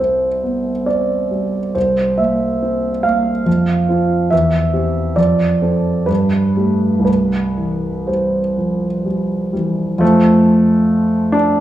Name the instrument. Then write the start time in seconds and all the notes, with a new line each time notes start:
grand piano
Already playing: C2 G3 E5
0.00 C4 C5
0.43 B3
0.86 C4 D5
1.31 G3
1.75 C2 C5
2.18 A#3 E5
2.62 C4
3.03 A#3 F5
3.46 F2
3.89 C4 F4
4.30 E2 E5
4.73 C4 G4
5.16 F2 D5
5.62 C4 A4
6.06 G2 B4
6.56 A3 G4
6.99 C2
7.05 B4
7.58 E3
8.07 G3 C5
8.58 F3
9.05 G3
9.53 E3 G3
9.98 F2 A3 F4 A4 C5
11.32 D4